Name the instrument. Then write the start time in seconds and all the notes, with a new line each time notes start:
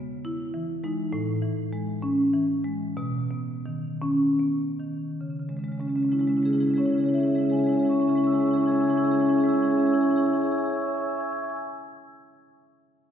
marimba
Already playing: C#3 G#3 B3
0.25 E4
0.54 E3
0.84 G#3 D#4
1.13 A2
1.42 E3
1.72 G#3
2.02 C#4
2.34 E3
2.64 G#3
2.97 B2
3.31 B3
3.66 D#3
4.02 C#4
4.40 B3
4.79 D#3
5.21 C#3
5.30 C#3
5.39 C#3
5.49 C#3 G#3
5.57 C#3 G#3
5.64 G#3
5.68 C#3 G#3
5.78 C#3 G#3 C#4
5.87 C#3 G#3 C#4
5.96 C#3 G#3 C#4
6.03 G#3 C#4
6.09 C#3 G#3 E4
6.13 C#4
6.19 C#3 G#3 C#4 E4
6.27 C#3 G#3 C#4 E4
6.36 C#3 G#3 C#4 E4
6.43 G#3 C#4 E4 G#4
6.49 C#3 G#3 E4
6.53 C#4 G#4
6.58 C#3 G#3 E4 G#4
6.63 G#3 C#4
6.67 C#3 C#4 E4 G#4
6.74 C#3 G#3 E4 G#4
6.78 G#3 C#4 C#5
6.83 C#3 C#4 E4 G#4 C#5
6.89 G#3 E4 G#4 C#5
6.94 C#3 G#3 C#4 G#4
6.99 C#4 E4 C#5
7.04 C#3 G#3 G#4 C#5
7.09 G#3 C#4 E4 C#5
7.14 C#3 E4 G#4 E5
7.18 G#3 C#4 G#4 C#5 E5
7.23 C#3 C#4 E4 C#5
7.27 G#3 E4 G#4 E5
7.32 C#3 G#3 C#4 G#4 C#5 E5
7.38 C#4 E4 G#4 C#5 E5
7.43 C#3 G#3 E4 C#5
7.48 G#3 C#4 G#4 C#5 E5 G#5
7.53 C#3 E4 G#4 E5
7.58 G#3 C#4 E4 C#5 G#5
7.62 C#3 G#4 C#5 E5 G#5
7.67 G#3 C#4 E4 E5
7.71 C#3 G#3 G#4 C#5 G#5
7.76 C#4 E4 G#4 C#5 E5 G#5
7.81 C#3 G#3 C#4 E5 G#5
7.85 E4 G#4 C#5 C#6
7.89 C#3 G#3 C#4 G#4 C#5 E5 G#5
7.94 E4 E5 G#5 C#6
8.00 C#3 G#3 C#4 E4 G#4 C#5 C#6
8.04 C#4 C#5 E5 G#5
8.08 C#3 G#3 E4 G#4 E5 G#5 C#6
8.14 G#3 C#4 E4 G#4 C#5 E5 C#6
8.18 C#3 C#5 G#5
8.23 G#3 C#4 G#4 E5 G#5 C#6
8.27 C#3 C#4 E4 C#5 C#6 E6
8.32 G#3 E4 G#4 E5 G#5 E6
8.36 C#3 C#4 G#4 C#5 E5 G#5 C#6 E6
8.41 G#3 E4 C#5 C#6
8.45 C#3 G#3 C#4 G#4 C#5 E5 G#5 C#6 E6
8.51 E4 G#4 E5 G#5 C#6 E6
8.55 C#3 G#3 C#4 E4 C#5 E6
8.59 C#4 G#4 C#5 E5 G#5 C#6 E6
8.64 G#3 E4 E5 G#5 G#6
8.68 C#3 G#3 C#4 G#4 C#5 C#6 E6
8.73 E4 G#4 C#5 E5 G#5 C#6 E6 G#6
8.79 C#3 G#3 C#4 E4 E5 G#5 C#6 E6 G#6
8.83 G#4 C#5 G#6
8.87 C#3 G#3 C#4 E4 G#4 C#5 E5 G#5 C#6 E6 G#6
8.93 G#3 C#4 C#5 E5 G#5 C#6 E6 G#6
8.98 C#3 E4 G#4 E5 E6
9.02 G#3 C#4 G#4 C#5 G#5 C#6 E6 G#6
9.07 C#3 E4 C#5 E5 G#5 C#6 G#6
9.11 G#3 C#4 E4 G#4 E5 C#6 E6 G#6
9.15 C#3 G#4 C#5 G#5 E6
9.20 G#3 C#4 E4 E5 G#5 C#6 E6 G#6
9.24 C#3 G#4 C#5 C#6 G#6
9.28 G#3 C#4 E4 C#5 E5 G#5 E6 G#6
9.33 C#3 G#3 G#4 E5 G#5 C#6 E6 G#6
9.38 C#4 E4 G#4 C#5 C#6 E6
9.43 C#3 G#3 C#4 E4 C#5 E5 G#5 E6 G#6
9.48 G#3 G#4 C#5 E5 G#5 C#6 E6 G#6
9.54 C#4 E4 G#4 E5 G#5 C#6 G#6
9.58 G#3 C#5 E6 G#6
9.62 C#4 E4 G#4 C#5 E5 G#5 C#6 E6
9.67 G#3 C#4 E4 E5 G#5 C#6 E6 G#6
9.71 G#4 C#5 C#6 E6 G#6
9.76 G#3 C#4 E4 G#4 C#5 E5 G#5 G#6
9.80 E5 C#6 E6 G#6
9.85 C#4 E4 G#4 C#5 G#5 E6
9.89 C#4 C#5 E5 G#5 C#6 E6 G#6
9.94 E4 G#4 C#6 G#6
9.98 C#4 G#4 C#5 E5 G#5 E6 G#6
10.03 E4 C#5 E5 C#6 E6 G#6
10.08 C#4 E4 G#4 C#5 G#5 C#6 E6 G#6
10.12 E5 G#5 E6
10.16 E4 G#4 C#5 E5 C#6 G#6
10.21 G#4 C#5 G#5 C#6 E6 G#6
10.26 E4 G#4 E5 E6 G#6
10.30 E4 C#5 E5 G#5 C#6 E6
10.35 G#4 C#5 G#5 C#6 G#6
10.39 E4 E5 E6 G#6
10.44 G#4 C#5 E5 G#5 C#6 E6 G#6
10.51 G#4 C#5 E5 G#5 C#6 E6 G#6
10.57 G#4 C#5 E5 G#5 C#6 E6 G#6
10.63 G#4 C#5 E5 G#5 C#6 E6 G#6
10.69 G#4 C#5 E5 G#5 C#6 E6 G#6
10.76 C#5 G#5 C#6 E6 G#6
10.80 E5 C#6 E6 G#6
10.85 C#5 E5 G#5 E6 G#6
10.90 C#5 G#5 C#6 G#6
10.94 E5 G#5 C#6 E6
10.98 C#5 E5 E6 G#6
11.03 C#5 G#5 C#6 E6 G#6
11.08 E5 G#5 C#6 E6 G#6
11.14 E5 G#5 C#6 E6 G#6
11.20 E5 C#6 E6 G#6
11.25 E5 G#5 G#6
11.30 G#5 C#6 E6 G#6
11.36 E5 G#5 C#6 E6 G#6
11.42 E5 C#6 E6 G#6
11.47 E5 G#5 C#6 E6 G#6
11.54 G#5 E6 G#6